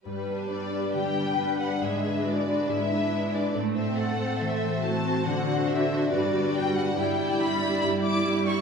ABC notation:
X:1
M:4/4
L:1/8
Q:1/4=140
K:G
V:1 name="Violin section"
B2 d2 g3 f | e2 d2 e3 d | z e f2 e2 a2 | f2 e2 d2 g f |
[K:Edor] g2 b2 b d'2 c' |]
V:2 name="Violin section"
z [DB]2 [DB]2 [DB]2 [DB] | [DB] [DB]2 [DB]2 [DB]2 [DB] | z [Cc]2 [Cc]2 [Cc]2 [Cc] | [Dc] [Dc]2 [Dc] [DB] [DB]2 [DB] |
[K:Edor] [Ed] [Ed]2 [Ed]2 [Ed]2 [Ed] |]
V:3 name="Cello section"
z4 G2 B2 | ^G2 F2 E4 | C2 A4 F2- | F8 |
[K:Edor] E2 D2 E4 |]
V:4 name="Harp"
G,, B, D d D, B, D d | ^G,, B, E d G,, B, E d | A,, C E c E, C E c | D, C D d G,, B, D d |
[K:Edor] G,, B, E d G,, B, E d |]
V:5 name="Viola section" clef=bass
G,2 G,2 G,2 G,2 | ^G,2 G,2 G,2 G,2 | A,2 A,2 A,2 A,2 | D,2 D,2 G,2 G,2 |
[K:Edor] G,2 G,2 G,2 G,2 |]